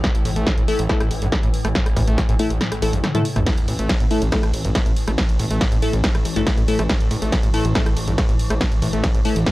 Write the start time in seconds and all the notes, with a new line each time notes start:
Already playing: A2 E3
0.04 A2, kick, snare, closed hi-hat
0.15 A1, closed hi-hat
0.25 A1 A2, open hi-hat
0.36 A1 A3, closed hi-hat
0.47 C3, kick, snare, closed hi-hat
0.58 A1 A2, closed hi-hat
0.68 A3 E4 A4, open hi-hat
0.79 A1, closed hi-hat
0.89 A3 E4 A4, kick, cross-stick, snare, closed hi-hat
1.00 A1, cross-stick, closed hi-hat
1.11 A1, open hi-hat
1.22 A1 G2, closed hi-hat
1.32 A3, kick, cross-stick, snare, closed hi-hat
1.43 A1 A2, closed hi-hat
1.54 open hi-hat
1.65 A1 A3, cross-stick, closed hi-hat
1.75 A2, kick, snare, closed hi-hat
1.86 A1, cross-stick, closed hi-hat
1.97 A1 A2, kick, open hi-hat
2.08 A1 A3, closed hi-hat
2.18 C3, kick, snare, closed hi-hat
2.29 A1 A2, closed hi-hat
2.39 A3 E4 A4, open hi-hat
2.50 A1, closed hi-hat
2.61 cross-stick, snare, closed hi-hat
2.72 A1, cross-stick, closed hi-hat
2.82 A1 A3 E4 A4, open hi-hat
2.93 A1 G2, closed hi-hat
3.04 A3, cross-stick, snare, closed hi-hat, high tom
3.15 A2 A3 E4 A4, closed hi-hat, high tom
3.25 open hi-hat
3.36 A1 A3, cross-stick, closed hi-hat, mid tom
3.46 A2 E3, kick, snare, closed hi-hat, ride
3.57 A1, closed hi-hat
3.68 A1 A2, open hi-hat
3.79 A1 A3, closed hi-hat
3.89 C3, kick, snare, closed hi-hat, ride
4.00 A1 A2, closed hi-hat
4.11 A3 E4 A4, open hi-hat
4.22 A1, closed hi-hat
4.32 A3 E4 A4, kick, cross-stick, snare, closed hi-hat, ride
4.43 A1, cross-stick, closed hi-hat
4.54 A1, open hi-hat
4.65 A1 G2, closed hi-hat
4.75 A3, kick, cross-stick, snare, closed hi-hat, ride
4.86 A1 A2, closed hi-hat
4.97 open hi-hat
5.08 A1 A3, cross-stick, closed hi-hat
5.18 A2, kick, snare, closed hi-hat, ride
5.29 A1, closed hi-hat
5.39 A1 A2, open hi-hat
5.50 A1 A3, closed hi-hat
5.61 C3, kick, snare, closed hi-hat, ride
5.72 A1 A2, closed hi-hat
5.82 A3 E4 A4, open hi-hat
5.93 A1, closed hi-hat
6.04 kick, cross-stick, snare, closed hi-hat, ride
6.15 A1, cross-stick, closed hi-hat
6.25 A1, open hi-hat
6.36 A1 G2 A3 E4 A4, closed hi-hat
6.47 A3, kick, cross-stick, snare, closed hi-hat, ride
6.58 A1 A2, closed hi-hat
6.68 A3 E4 A4, open hi-hat
6.79 A1 A3, cross-stick, closed hi-hat
6.89 A2, kick, snare, closed hi-hat, ride
7.00 A1, closed hi-hat
7.11 A1 A2, open hi-hat
7.22 A1 A3, closed hi-hat
7.32 C3, kick, snare, closed hi-hat, ride
7.43 A1 A2, closed hi-hat
7.54 A3 E4 A4, open hi-hat
7.65 A1, closed hi-hat
7.75 A3 E4 A4, kick, cross-stick, snare, closed hi-hat, ride
7.86 A1, cross-stick, closed hi-hat
7.97 A1, open hi-hat
8.07 A1 G2, closed hi-hat
8.18 A3, kick, cross-stick, snare, closed hi-hat, ride
8.29 A1 A2, closed hi-hat
8.39 open hi-hat
8.50 A1 A3, cross-stick, closed hi-hat
8.61 A2, kick, snare, closed hi-hat, ride
8.72 A1, closed hi-hat
8.82 A1 A2, open hi-hat
8.93 A1 A3, closed hi-hat
9.04 C3, kick, snare, closed hi-hat, ride
9.15 A1 A2, closed hi-hat
9.25 A3 E4 A4, open hi-hat
9.36 A1, closed hi-hat
9.47 kick, cross-stick, snare, closed hi-hat, ride